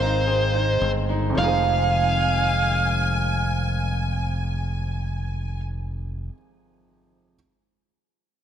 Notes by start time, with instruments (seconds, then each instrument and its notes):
Already playing: fingered electric bass G#1, clean electric guitar D#3 G#3 G#4, grand piano F3 C4 D#4, lead electric guitar C5, violin section F5
0.01 clean electric guitar C4, grand piano D#4
0.27 grand piano C4, clean electric guitar G#4
0.54 clean electric guitar G#3, grand piano D#4
0.81 fingered electric bass G1, clean electric guitar C4, grand piano C4
1.09 clean electric guitar G#3, grand piano D#4
1.30 grand piano F2 C3
1.35 fingered electric bass F1, clean electric guitar D#3 G#3, grand piano F3, lead electric guitar F5, violin section G#5
1.40 clean electric guitar C4 G#4, grand piano D#4 G#4
1.48 grand piano C5